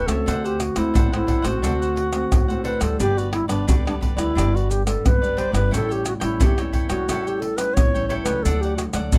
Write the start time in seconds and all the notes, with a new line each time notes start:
0.06 C#2 A3 C4 F#4 A4 C#5 E5, pandeiro, tamborim, maracas
0.26 D2 D3 D4 A4 C5 F#5, pandeiro, maracas, surdo
0.44 G4 A4 C5 F#5, pandeiro, maracas
0.60 F#4, muted cavaquinho stroke, pandeiro, tamborim, maracas
0.76 D2 A3 C4 E4 F#4 A4 C5 F#5, pandeiro, tamborim, maracas
0.94 A1 A2 D4 A4 C5 F#5, pandeiro, maracas, surdo
1.12 A3 C4 E4 F#4 A4 C5 F#5, pandeiro, tamborim, maracas
1.27 D4 A4 C5 F#5, pandeiro, surdo
1.42 A1 A3 C4 F#4 A4 C5 F#5, pandeiro, tamborim, maracas
1.62 D2 D3 A3 C4 D4 F#4 A4 C5 F#5, pandeiro, tamborim, maracas, surdo
1.82 A4 C5 F#5, pandeiro, maracas
1.96 muted cavaquinho stroke, pandeiro
2.13 A3 C4 F#4, pandeiro, tamborim, maracas
2.32 D2 A2, pandeiro, tamborim, maracas, surdo
2.48 A3 C4 F#4 A4 C5 F#5, pandeiro, maracas
2.64 D4 A4 B4 C5 F#5, pandeiro
2.80 D2 G3 B3 D4 A4 C5 F#5, pandeiro, tamborim, maracas
2.99 G1 G2 D4 G4 B4 D5, pandeiro, maracas, surdo
3.17 F#4 G4 B4 D5, pandeiro, maracas
3.32 E4, muted cavaquinho stroke, pandeiro, tamborim
3.48 G1 G3 B3 D4 G4 B4 D5, pandeiro, tamborim, maracas
3.67 D2 D3 D4 F#4 G4 B4 D5, pandeiro, maracas, surdo
3.85 G3 B3 D4 G4 B4 D5, pandeiro, tamborim, maracas
4.01 D4 G4 B4 D5, pandeiro, surdo
4.17 D2 G3 B3 D4 E4 G4 B4 D5, pandeiro, tamborim, maracas
4.35 G1 G2 G3 B3 D4 G4 B4 D5, pandeiro, tamborim, maracas, surdo
4.55 F#4 G4 B4 D5, pandeiro, maracas
4.70 G4, muted cavaquinho stroke, pandeiro, maracas
4.86 G3 B3 D4 A4, pandeiro, tamborim, maracas
5.05 G1 D3 B4, pandeiro, tamborim, maracas, surdo
5.22 G3 B3 D4 G4 B4 D5, pandeiro, maracas
5.37 D4 G4 B4 C5 D5, pandeiro
5.52 G1 G3 C#4 E4 G4 B4 D5, pandeiro, tamborim, maracas
5.71 A1 A2 E4 A4 C#5 G5, pandeiro, maracas, surdo
5.75 A4
5.89 G4 A4 C#5 G5, pandeiro, maracas
6.04 F#4, muted cavaquinho stroke, pandeiro, tamborim, maracas
6.20 A1 G3 C#4 E4 A4 C#5 G5, pandeiro, tamborim, maracas
6.40 E2 E3 E4 G4 A4 C#5 G5, pandeiro, maracas, surdo
6.58 G3 C#4 E4 A4 C#5 G5, pandeiro, tamborim, maracas
6.73 E4 A4 C#5 G5, pandeiro, surdo
6.89 E2 G3 C#4 E4 F#4 A4 C#5 G5, pandeiro, tamborim, maracas
7.08 A1 A2 G3 C#4 E4 A4 C#5 G5, pandeiro, tamborim, maracas, surdo
7.27 G4 A4 C#5 G5, pandeiro, maracas
7.40 A4, muted cavaquinho stroke, pandeiro
7.57 G3 C#4 E4 B4, pandeiro, tamborim, maracas
7.74 A1 E3 C#5, pandeiro, tamborim, maracas, surdo
7.94 G3 C#4 E4 A4 C#5 G5, pandeiro, maracas
8.08 E4 A4 C#5 G5, pandeiro
8.24 C#2 F#3 A3 D4 B4 C#5 G5, pandeiro, tamborim, maracas
8.28 A4
8.43 D2 D3 D4 A4 D5 F#5, pandeiro, maracas, surdo
8.61 G4 F#5, pandeiro, maracas
8.65 A4 D5
8.77 F#4, muted cavaquinho stroke, pandeiro, tamborim, maracas
8.93 D2 F#3 A3 D4 A4 D5 F#5, pandeiro, tamborim, maracas
9.12 A1 A2 D4 A4 D5 F#5, pandeiro, maracas, surdo